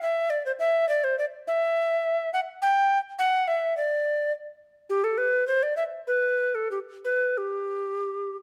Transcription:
0.02 0.32 E5 medium
0.30 0.45 D5 medium
0.46 0.52 C5 medium
0.59 0.88 E5 medium
0.89 1.05 D5 medium
1.04 1.18 C5 medium
1.19 1.25 D5 medium
1.47 2.32 E5 medium
2.33 2.40 F#5 medium
2.62 2.99 G5 medium
3.19 3.49 F#5 medium
3.48 3.77 E5 medium
3.77 4.32 D5 medium
4.90 5.06 G4 medium
5.04 5.19 A4 medium
5.18 5.47 B4 medium
5.47 5.64 C5 medium
5.63 5.76 D5 medium
5.77 5.84 E5 medium
6.07 6.56 B4 medium
6.55 6.71 A4 soft
6.71 6.79 G4 soft
7.05 7.39 B4 soft
7.38 8.36 G4 soft

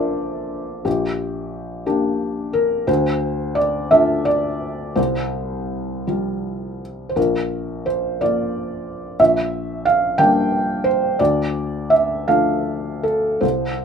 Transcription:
0.00 0.85 A#1 soft
0.00 0.82 D4 soft
0.00 0.82 F4 soft
0.00 0.88 A#4 medium
0.00 0.88 C5 medium
0.00 0.86 D5 medium
0.00 0.88 E5 soft
0.85 1.84 A#1 soft
0.85 1.85 G4 medium
1.86 2.84 A#3 soft
1.86 2.84 D4 soft
1.86 2.84 G4 soft
2.53 2.88 A#4 medium
2.87 3.87 D2 medium
2.87 3.56 C5 medium
3.55 3.90 D5 medium
3.91 4.93 A3 soft
3.91 4.94 D4 soft
3.91 4.94 F4 soft
3.91 4.26 E5 medium
4.25 4.97 D5 medium
4.95 6.04 C2 soft
4.95 6.80 C5 medium
6.07 7.12 F3 soft
6.07 7.13 G3 soft
6.07 7.13 F4 soft
7.09 7.17 C5 soft
7.16 8.17 A#1 soft
7.16 7.86 A#4 medium
7.86 8.20 C5 medium
8.21 9.16 F3 soft
8.21 9.16 A#3 soft
8.21 9.16 F4 soft
8.21 9.20 D5 medium
9.20 10.15 A#1 soft
9.20 9.85 E5 medium
9.85 10.18 F5 medium
10.18 11.16 G3 soft
10.18 11.16 A#3 soft
10.18 11.16 D4 soft
10.18 10.85 G5 medium
10.84 11.19 C5 medium
11.19 12.25 D2 soft
11.19 11.90 D5 medium
11.90 12.27 E5 medium
12.28 13.39 F3 soft
12.28 13.39 A3 soft
12.28 13.39 D4 soft
12.28 13.04 F5 medium
13.03 13.42 A4 soft
13.41 13.85 C2 soft
13.41 13.85 C5 medium

